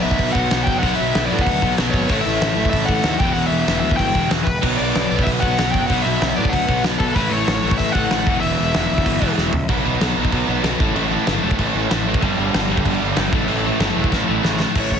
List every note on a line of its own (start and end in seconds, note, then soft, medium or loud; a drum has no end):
0.00 0.34 B2 medium
0.00 0.81 B2 loud
0.00 0.35 F#3 medium
0.00 0.82 F#3 loud
0.00 0.33 B3 loud
0.00 0.83 B3 loud
0.00 0.50 B3 medium
0.00 0.32 E5 loud
0.05 0.15 B1 medium
0.05 0.49 B2 medium
0.05 0.51 F#3 medium
0.11 kick medium
0.19 0.30 B1 medium
0.19 kick loud
0.19 open hi-hat medium
0.32 0.46 B1 medium
0.32 0.50 F#3 medium
0.32 0.50 B3 medium
0.32 0.63 F#5 loud
0.32 kick medium
0.38 0.48 B2 medium
0.51 0.62 B1 loud
0.51 0.81 B2 medium
0.51 0.83 F#3 medium
0.51 0.83 B3 medium
0.51 snare loud
0.51 open hi-hat medium
0.64 0.78 F#1 medium
0.64 0.78 G5 loud
0.64 kick loud
0.79 1.29 B2 loud
0.79 0.95 F#5 loud
0.83 0.94 B1 loud
0.83 1.30 F#3 loud
0.83 1.29 B3 loud
0.83 kick loud
0.83 open hi-hat medium
0.95 1.30 E5 loud
1.00 1.11 B1 medium
1.15 1.26 B1 loud
1.15 snare loud
1.15 open hi-hat medium
1.25 1.42 D5 loud
1.30 1.42 A2 medium
1.30 1.76 B2 medium
1.30 1.78 F#3 medium
1.30 1.77 B3 medium
1.39 1.73 F#5 loud
1.39 kick medium
1.46 1.57 D2 loud
1.46 kick loud
1.46 open hi-hat medium
1.62 1.73 B1 loud
1.62 1.77 B2 medium
1.62 1.78 F#3 medium
1.62 1.77 B3 medium
1.62 kick medium
1.77 1.90 B1 medium
1.77 2.08 B2 medium
1.77 2.10 F#3 medium
1.77 snare loud
1.77 open hi-hat medium
1.81 2.10 B3 medium
1.91 2.04 G#1 loud
1.91 2.25 C#5 loud
1.91 kick medium
2.09 2.21 A1 loud
2.09 2.56 A2 medium
2.09 2.57 E3 loud
2.09 kick loud
2.09 open hi-hat medium
2.13 2.55 A3 loud
2.21 2.69 E5 loud
2.26 2.37 A1 loud
2.41 2.52 A1 loud
2.41 snare loud
2.41 open hi-hat medium
2.56 2.67 A1 medium
2.56 3.03 A2 medium
2.56 3.04 E3 medium
2.56 3.03 A3 loud
2.65 kick medium
2.70 2.84 A1 loud
2.70 2.85 E5 loud
2.70 kick loud
2.70 open hi-hat medium
2.86 3.00 A1 medium
2.86 3.04 A3 medium
2.86 3.19 F#5 loud
2.86 kick loud
2.90 3.02 A2 medium
2.90 3.04 E3 medium
3.03 3.15 D#2 loud
3.03 3.19 A2 medium
3.03 3.20 E3 medium
3.03 snare loud
3.03 open hi-hat medium
3.08 3.21 A3 medium
3.19 3.31 E1 medium
3.19 3.65 E2 medium
3.19 3.68 B2 loud
3.19 3.32 G5 loud
3.19 kick loud
3.23 3.69 E3 loud
3.32 3.47 E1 loud
3.32 3.46 F#5 loud
3.32 open hi-hat medium
3.47 3.78 E5 loud
3.51 3.62 E1 medium
3.67 3.79 E1 loud
3.67 4.14 E2 medium
3.67 4.15 B2 medium
3.67 4.13 E3 loud
3.67 snare loud
3.67 open hi-hat medium
3.80 3.94 D2 loud
3.80 3.96 E5 loud
3.91 kick medium
3.97 4.10 G1 medium
3.97 4.14 E2 medium
3.97 4.15 B2 medium
3.97 4.28 G5 loud
3.97 kick loud
3.97 open hi-hat medium
4.01 4.14 E3 medium
4.14 4.26 E1 medium
4.14 4.48 E2 medium
4.14 4.47 B2 medium
4.14 4.46 E3 medium
4.14 kick medium
4.31 4.42 E1 medium
4.31 snare loud
4.31 open hi-hat medium
4.44 4.58 E1 medium
4.44 4.78 B4 medium
4.44 kick loud
4.61 4.74 B1 loud
4.61 5.14 B2 medium
4.61 5.12 F#3 medium
4.61 5.10 B3 loud
4.61 kick loud
4.61 crash loud
4.77 4.91 B1 loud
4.77 5.23 D5 loud
4.95 5.06 B1 loud
4.95 snare loud
4.95 open hi-hat medium
5.11 5.22 B1 medium
5.11 5.56 B2 medium
5.11 5.58 F#3 medium
5.11 5.57 B3 loud
5.19 kick medium
5.23 5.38 B1 medium
5.23 5.28 E5 loud
5.23 kick loud
5.23 open hi-hat medium
5.40 5.54 B1 loud
5.40 5.58 F#3 medium
5.40 5.57 B3 medium
5.40 5.71 F#5 loud
5.40 kick medium
5.44 5.56 B2 medium
5.58 5.70 B1 medium
5.58 5.89 B2 medium
5.58 5.90 F#3 medium
5.58 5.90 B3 medium
5.58 snare loud
5.58 open hi-hat medium
5.71 5.85 F#1 medium
5.71 5.86 G5 loud
5.71 kick loud
5.87 6.01 B1 loud
5.87 6.36 B2 loud
5.87 6.03 F#5 loud
5.87 kick medium
5.87 open hi-hat medium
5.92 6.38 F#3 medium
5.92 6.36 B3 medium
6.02 6.16 B1 medium
6.02 6.33 E5 loud
6.22 6.32 B1 loud
6.22 snare loud
6.22 open hi-hat medium
6.36 6.49 A2 medium
6.36 6.84 B3 loud
6.36 6.53 D5 loud
6.40 6.84 B2 medium
6.40 6.85 F#3 medium
6.45 kick medium
6.49 6.64 D2 medium
6.49 6.81 F#5 loud
6.49 kick loud
6.49 open hi-hat medium
6.68 6.80 B1 medium
6.68 6.82 B2 medium
6.68 6.84 F#3 medium
6.68 6.83 B3 loud
6.68 kick loud
6.84 6.95 B1 loud
6.84 7.15 B2 medium
6.84 7.17 F#3 medium
6.84 snare loud
6.84 open hi-hat medium
6.89 7.18 B3 loud
6.98 7.11 B1 loud
6.98 7.16 A4 medium
6.98 kick loud
7.15 7.27 A1 loud
7.15 7.62 A2 loud
7.15 7.64 E3 medium
7.15 7.31 B4 medium
7.15 kick loud
7.15 open hi-hat medium
7.20 7.62 A3 loud
7.29 7.42 A1 loud
7.29 7.80 C#5 loud
7.47 7.59 A1 loud
7.47 snare loud
7.47 open hi-hat medium
7.63 7.75 A1 loud
7.63 8.10 A2 medium
7.63 8.11 E3 medium
7.63 8.10 A3 medium
7.71 kick medium
7.78 7.90 A1 medium
7.78 7.92 E5 loud
7.78 kick medium
7.78 open hi-hat medium
7.92 8.06 A1 loud
7.92 8.10 A3 medium
7.92 8.43 F#5 loud
7.92 kick loud
7.96 8.09 A2 medium
7.96 8.10 E3 medium
8.11 8.23 A1 loud
8.11 8.26 A2 medium
8.11 8.27 E3 medium
8.11 snare loud
8.11 open hi-hat medium
8.15 8.28 A3 medium
8.27 8.38 E1 medium
8.27 8.72 E2 loud
8.27 8.74 B2 loud
8.27 kick loud
8.31 8.76 E3 loud
8.40 8.54 E1 loud
8.40 9.32 E5 medium
8.40 open hi-hat medium
8.60 8.71 E1 medium
8.74 8.86 E1 loud
8.74 9.21 E2 medium
8.74 9.22 B2 medium
8.74 snare loud
8.74 open hi-hat medium
8.78 9.20 E3 medium
8.93 9.03 D2 loud
8.98 kick medium
9.05 9.17 G1 medium
9.05 9.20 E2 medium
9.05 9.21 B2 medium
9.05 9.20 E3 medium
9.05 kick loud
9.05 open hi-hat medium
9.21 9.33 E1 medium
9.21 9.54 E2 medium
9.21 9.53 B2 medium
9.21 9.52 E3 medium
9.21 kick loud
9.38 9.49 E1 loud
9.38 snare medium
9.53 9.64 C#2 loud
9.53 floor tom loud
9.69 9.79 B1 loud
9.69 9.85 B2 loud
9.69 9.84 F#3 medium
9.69 9.84 B3 medium
9.69 kick loud
9.69 crash medium
9.85 9.96 B1 loud
9.85 10.00 B2 medium
9.85 10.00 F#3 medium
9.85 10.01 B3 loud
10.01 10.12 B1 medium
10.01 10.16 B2 medium
10.01 10.16 F#3 loud
10.01 10.15 B3 loud
10.01 snare loud
10.01 crash medium
10.16 10.28 B1 medium
10.16 10.30 B2 medium
10.16 10.31 F#3 medium
10.16 10.32 B3 medium
10.25 kick medium
10.31 10.43 B1 medium
10.31 10.48 B2 loud
10.31 10.47 F#3 loud
10.31 10.46 B3 loud
10.31 kick loud
10.31 crash medium
10.47 10.59 B1 medium
10.47 10.61 B2 medium
10.47 10.62 F#3 medium
10.47 10.63 B3 medium
10.63 10.74 B1 medium
10.63 10.78 B2 medium
10.63 10.79 F#3 medium
10.63 10.79 B3 medium
10.63 snare loud
10.63 crash medium
10.79 10.91 A1 loud
10.79 10.95 A2 loud
10.79 10.95 E3 loud
10.79 10.94 A3 loud
10.79 kick loud
10.94 11.16 A1 loud
10.94 11.10 A2 medium
10.94 11.11 E3 medium
10.94 11.11 A3 loud
10.94 crash medium
11.11 11.27 A2 loud
11.11 11.26 E3 medium
11.11 11.26 A3 loud
11.27 11.38 G1 loud
11.27 11.42 A2 medium
11.27 11.43 E3 loud
11.27 11.43 A3 loud
11.27 snare loud
11.27 crash medium
11.43 11.54 E1 medium
11.43 11.60 A2 loud
11.43 11.59 E3 medium
11.43 11.58 A3 loud
11.51 kick medium
11.59 11.69 A1 medium
11.59 11.74 A2 loud
11.59 11.74 E3 loud
11.59 11.75 A3 loud
11.59 kick loud
11.59 crash medium
11.75 11.86 A1 medium
11.75 11.91 A2 medium
11.75 11.90 E3 medium
11.75 11.90 A3 loud
11.91 12.12 A1 loud
11.91 12.06 A2 medium
11.91 12.06 E3 medium
11.91 12.07 A3 loud
11.91 snare loud
11.91 crash medium
12.07 12.22 A2 medium
12.07 12.22 E3 medium
12.07 12.22 A3 loud
12.14 kick medium
12.22 12.33 G1 loud
12.22 12.37 G2 loud
12.22 12.37 D3 loud
12.22 12.36 G3 loud
12.22 kick loud
12.22 crash medium
12.37 12.48 G1 loud
12.37 12.52 G2 medium
12.37 12.53 D3 medium
12.37 12.53 G3 loud
12.54 12.65 G1 loud
12.54 12.71 G2 medium
12.54 12.70 D3 loud
12.54 12.69 G3 loud
12.54 snare loud
12.54 crash medium
12.69 12.79 G1 medium
12.69 12.84 G2 medium
12.69 12.85 D3 medium
12.69 12.85 G3 medium
12.77 kick medium
12.85 12.96 G1 medium
12.85 13.01 G2 loud
12.85 13.00 D3 loud
12.85 12.99 G3 loud
12.85 kick loud
12.85 crash medium
13.01 13.12 G1 loud
13.01 13.16 G2 medium
13.01 13.17 D3 medium
13.01 13.17 G3 medium
13.16 13.28 G1 loud
13.16 13.32 G2 medium
13.16 13.33 D3 medium
13.16 13.33 G3 loud
13.16 snare loud
13.16 crash medium
13.32 13.43 A1 medium
13.32 13.49 A2 loud
13.32 13.48 E3 loud
13.32 13.47 A3 loud
13.32 kick loud
13.48 13.70 A1 loud
13.48 13.64 A2 medium
13.48 13.64 E3 medium
13.48 13.65 A3 loud
13.48 crash medium
13.65 13.80 A2 medium
13.65 13.80 E3 loud
13.65 13.79 A3 loud
13.80 13.91 G1 loud
13.80 13.94 A2 medium
13.80 13.95 E3 medium
13.80 13.95 A3 loud
13.80 snare loud
13.80 crash medium
13.95 14.07 E1 medium
13.95 14.12 A2 medium
13.95 14.11 E3 medium
13.95 14.11 A3 loud
14.04 kick medium
14.12 14.23 A1 medium
14.12 14.26 A2 medium
14.12 14.27 E3 loud
14.12 14.27 A3 loud
14.12 kick loud
14.12 snare medium
14.27 14.39 A1 medium
14.27 14.43 A2 medium
14.27 14.42 E3 medium
14.27 14.42 A3 medium
14.43 14.64 A1 medium
14.43 14.58 A2 medium
14.43 14.59 E3 medium
14.43 14.59 A3 loud
14.43 snare medium
14.59 14.74 A2 medium
14.59 14.75 E3 medium
14.59 14.75 A3 medium
14.59 snare loud
14.75 14.95 A1 medium
14.75 14.90 A2 medium
14.75 14.91 E3 medium
14.75 14.91 A3 loud
14.75 kick loud
14.75 crash loud
14.75 crash medium
14.80 14.93 C#5 medium
14.91 15.00 A2 medium
14.91 15.00 E3 medium
14.91 15.00 C#5 medium
14.91 kick medium